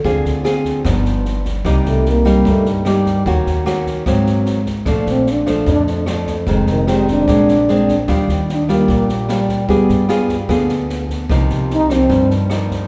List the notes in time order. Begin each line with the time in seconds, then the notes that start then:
0.04 D2 D3 C4 F4 G#4, kick, snare
0.25 D2, snare
0.44 C4 F4 G#4, cross-stick, snare
0.65 kick, snare
0.85 G1 G2 F3 B3 D#4, kick, cross-stick, snare
1.05 snare
1.25 snare
1.45 kick, snare
1.65 C2 C3 G3 A#3 D#4, kick, cross-stick, snare
1.85 C2 A3, snare
2.05 A#3, snare
2.25 G3 A#3 D#4, kick, cross-stick, snare
2.45 G2, kick, snare
2.51 A3
2.65 snare
2.85 G3 A#3 D#4, cross-stick, snare
3.05 kick, snare
3.26 D#2 D#3 A#3 C#4 F#4, kick, snare
3.46 D#2, snare
3.66 A#3 C#4 F#4, cross-stick, snare
3.86 kick, snare
4.06 G#1 G#2 F#3 A#3 C4, kick, cross-stick, snare
4.26 snare
4.45 snare
4.66 kick, snare
4.86 A#1 A#2 F3 A3 D4, kick, cross-stick, snare
5.06 A#1 C4, snare
5.26 snare
5.31 D4
5.46 F3 A3 D4, kick, cross-stick, snare
5.66 F2, kick, snare
5.72 D4
5.87 snare
6.06 F3 A3 D4, cross-stick, snare
6.26 kick, snare
6.46 F1 F2 D#3 G#3 C4, kick, snare
6.67 F1, snare
6.71 D#3
6.87 D#3 G#3 C4, cross-stick, snare
6.92 G3
7.07 D4, kick, snare
7.28 A#1 A#2 G#3 C4 D4, kick, cross-stick, snare
7.48 snare
7.68 G#3 C4 D4, snare
7.88 kick, snare
8.08 D#2 D#3 G3 D4 F4, kick, cross-stick, snare
8.28 D#2, snare
8.49 snare
8.53 D4
8.68 G3 A#3 D4 F4, kick, cross-stick, snare
8.88 A#1 A#2, kick, snare
9.09 snare
9.29 G3 D4 F4, cross-stick, snare
9.49 kick, snare
9.69 G2 G3 B3 F4 G#4, kick, snare
9.89 G2, snare
10.09 B3 F4 G#4, cross-stick, snare
10.29 kick, snare
10.49 D2 D3 B3 F4 G#4, kick, cross-stick, snare
10.69 snare
10.89 snare
11.09 kick, snare
11.29 C2 C3 F3 A#3 D#4, kick, cross-stick, snare
11.49 C2, snare
11.70 snare
11.74 D#4
11.90 F3 A#3 C4 D#4, kick, cross-stick, snare
12.09 G2, kick, snare
12.30 snare
12.50 F3 A#3 D#4, cross-stick, snare
12.70 kick, snare